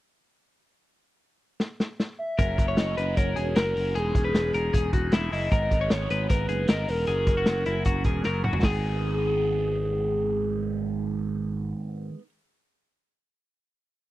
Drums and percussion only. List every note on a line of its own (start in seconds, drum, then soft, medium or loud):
1.60 snare medium
1.80 snare medium
2.00 snare medium
2.39 kick medium
2.39 closed hi-hat medium
2.58 kick medium
2.58 closed hi-hat medium
2.77 snare medium
2.77 closed hi-hat medium
2.98 closed hi-hat medium
3.17 kick medium
3.17 closed hi-hat medium
3.36 closed hi-hat medium
3.56 snare loud
3.56 closed hi-hat medium
3.77 open hi-hat medium
3.96 closed hi-hat medium
4.15 kick medium
4.15 closed hi-hat medium
4.35 snare medium
4.35 closed hi-hat medium
4.54 closed hi-hat medium
4.74 kick medium
4.74 closed hi-hat medium
4.93 kick medium
4.93 closed hi-hat medium
5.12 snare loud
5.12 closed hi-hat medium
5.33 open hi-hat medium
5.52 kick loud
5.52 closed hi-hat medium
5.71 kick medium
5.71 closed hi-hat medium
5.90 snare medium
5.90 closed hi-hat medium
6.10 closed hi-hat medium
6.30 kick medium
6.30 closed hi-hat medium
6.49 closed hi-hat medium
6.68 snare loud
6.68 closed hi-hat medium
6.88 open hi-hat medium
7.07 closed hi-hat medium
7.27 kick medium
7.27 closed hi-hat medium
7.46 snare medium
7.46 closed hi-hat medium
7.66 closed hi-hat medium
7.85 kick medium
7.85 closed hi-hat medium
8.04 kick medium
8.04 closed hi-hat medium
8.23 snare medium
8.44 mid tom medium
8.53 floor tom medium
8.63 kick medium
8.63 snare medium
8.63 open hi-hat medium